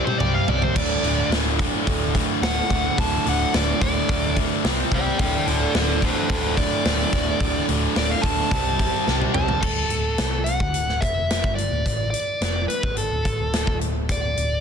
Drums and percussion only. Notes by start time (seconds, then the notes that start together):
0.07 high tom
0.20 mid tom
0.48 floor tom
0.62 floor tom
0.76 kick, crash
1.04 open hi-hat
1.32 snare, open hi-hat
1.59 kick, open hi-hat
1.87 kick, open hi-hat
2.15 kick, open hi-hat
2.43 snare, open hi-hat
2.70 kick, open hi-hat
2.98 kick, open hi-hat
3.26 open hi-hat
3.54 snare, open hi-hat
3.81 kick, open hi-hat
4.09 kick, open hi-hat
4.37 kick, open hi-hat
4.64 snare, open hi-hat
4.92 kick, open hi-hat
5.19 kick, open hi-hat
5.47 open hi-hat
5.75 snare, open hi-hat
6.02 kick, open hi-hat
6.29 kick, open hi-hat
6.57 kick, open hi-hat
6.85 snare, open hi-hat
7.13 kick, open hi-hat
7.40 kick, open hi-hat
7.69 open hi-hat
7.96 snare, open hi-hat
8.23 kick, open hi-hat
8.51 kick, open hi-hat
8.79 kick, open hi-hat
9.08 snare
9.21 high tom
9.34 mid tom
9.48 floor tom
9.63 kick, crash
9.90 closed hi-hat
10.18 snare, closed hi-hat
10.46 closed hi-hat
10.60 kick
10.74 closed hi-hat
10.89 snare
11.02 kick, closed hi-hat
11.30 snare, closed hi-hat
11.44 kick
11.58 closed hi-hat
11.86 kick, closed hi-hat
12.14 closed hi-hat
12.41 snare, closed hi-hat
12.70 closed hi-hat
12.83 kick
12.97 closed hi-hat
13.25 kick, closed hi-hat
13.53 snare, closed hi-hat
13.67 kick
13.81 closed hi-hat
14.09 kick, closed hi-hat
14.37 closed hi-hat